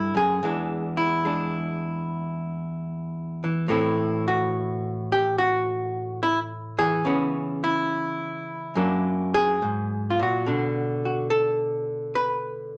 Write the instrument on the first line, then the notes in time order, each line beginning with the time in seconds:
hollow-body jazz guitar
Already playing: G2 D3 B3 D4 E4
0.15 F#2 G#4
0.43 E2 E3 G#3 D4
0.97 E4
1.25 G#3 D4
3.44 E3
3.68 A2 E3 A3 C4 E4
4.28 F#4
5.12 G4
5.38 F#4
6.23 E4
6.78 E3 G#4
7.05 C#3 E3 B3 C#4
7.64 E4
8.75 F#2 F#3 A#3 D4
9.34 G#4
9.62 G#2
10.10 F4
10.19 A#2 F#4
10.46 B2 D3 D4
11.05 F#4
11.30 A4
12.15 B4